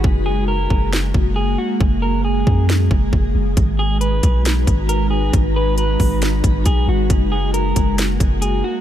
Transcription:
<<
  \new Staff \with { instrumentName = "Clean electric guitar" } { \time 4/4 \key fis \mixolydian \tempo 4 = 136 r8 gis'8 ais'4 r4 gis'8 fis'8 | r8 ais'8 gis'4 r2 | r8 gis'8 b'4 r4 ais'8 gis'8 | r8 b'8 b'4 r4 gis'8 fis'8 |
r8 gis'8 ais'4 r4 gis'8 fis'8 | }
  \new Staff \with { instrumentName = "Ambient pad" } { \time 4/4 \key fis \mixolydian << { ais1~ | ais1 | <dis' b' ais''>1~ | <dis' b' ais''>1 |
ais1 | } \\ { <gis fis'>1 | gis'1 | fis'1~ | fis'1~ |
fis'1 | } >> }
  \new Staff \with { instrumentName = "808-style bass" } { \clef bass \time 4/4 \key fis \mixolydian fis,,4. fis,,4 fis,,4 r8 | fis,,4. fis,4 fis,,8 fis,,8 fis,,8 | gis,,4. b,,4 gis,,4. | gis,,4. gis,,4 gis,,8 b,,8 gis,,8 |
fis,,4. fis,,4 fis,,4 r8 | }
  \new DrumStaff \with { instrumentName = "Drums" } \drummode { \time 4/4 bd4 r8 bd8 sn8 bd8 r4 | bd4 r8 bd8 sn8 bd8 bd4 | <hh bd>4 hh8 <hh bd>8 <hh sn>8 <hh bd>8 hh4 | <hh bd>4 hh8 <hho bd>8 <hh sn>8 <hh bd>8 <hh bd>4 |
<hh bd>4 hh8 <hh bd>8 <hh sn>8 <hh bd>8 hh4 | }
>>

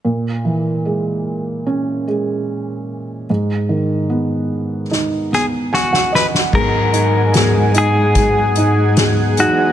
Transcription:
<<
  \new Staff \with { instrumentName = "Analog synth pad" } { \time 4/4 \key gis \minor \tempo 4 = 74 r1 | r1 | <gis' fis'' gis''>1 | }
  \new Staff \with { instrumentName = "Clean electric guitar" } { \time 4/4 \key gis \minor r1 | r2 r8 gis'8 fis'8 b'8 | ais'4. gis'2 fis'8 | }
  \new Staff \with { instrumentName = "Felt piano" } { \time 4/4 \key gis \minor r1 | r2. gis''16 fis''16 dis''8 | r1 | }
  \new Staff \with { instrumentName = "Felt piano" } { \clef bass \time 4/4 \key gis \minor ais,8 e8 gis4 cis'8 gis4. | gis,8 dis8 b4 dis'8 b4. | gis8 dis'8 gis8 dis'8 gis8 dis'8 gis8 dis'8 | }
  \new Staff \with { instrumentName = "Steel-string acoustic guitar" } { \time 4/4 \key gis \minor r1 | r1 | <gis, dis fis b dis' gis'>4 <fis b dis' gis'>4 <fis b dis' gis'>4 <fis b dis' gis'>4 | }
  \new Staff \with { instrumentName = "Cello section" } { \clef bass \time 4/4 \key gis \minor r1 | r1 | gis,2~ gis,8 gis,4 e,8 | }
  \new DrumStaff \with { instrumentName = "Drums" } \drummode { \time 4/4 r4 r4 r4 r4 | r4 r4 sn8 sn8 sn16 sn16 sn16 sn16 | <cymc bd>8 hh8 <hh sn>8 hh8 <hh bd sn>8 hh8 <hh sn>8 hh8 | }
>>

